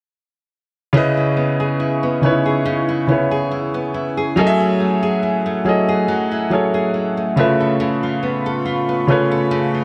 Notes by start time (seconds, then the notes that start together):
0.93 C#3 C#4 E4 B4 G#5 C#6
0.97 D#5
1.17 E4
1.37 B3
1.60 G#4
1.80 E4
2.03 B3
2.22 C#3 C#4 D#4 E4 B4
2.26 C#5
2.30 E4
2.46 G#4
2.65 C#3
2.89 E4
3.07 C#3 B3 C#4 E4 B4
3.12 C#5
3.31 G#4
3.51 E4
3.74 B3
3.94 E4
4.17 G#4
4.36 F#3 A3 C#4 G#4 A4 F#5
4.40 D#5
4.47 E5
4.60 E4
4.80 A3
5.03 G#4
5.23 E4
5.46 A3
5.65 F#3 C#4 E4 G#4 A4
5.69 D#5
5.89 G#4
6.08 F#3
6.31 E4
6.50 F#3 A3 C#4 G#4 A4
6.54 C#5
6.74 G#4
6.94 E4
7.17 A3
7.36 C#3 C#4 F4 A4 B4 B5 C#6
7.40 E5
7.60 A4
7.80 C#3
8.03 F4
8.23 B3
8.46 A4
8.65 F4
8.89 B3
9.07 C#3 C#4 F4 A4 B4
9.11 C#5
9.31 A4
9.51 C#3
9.74 F4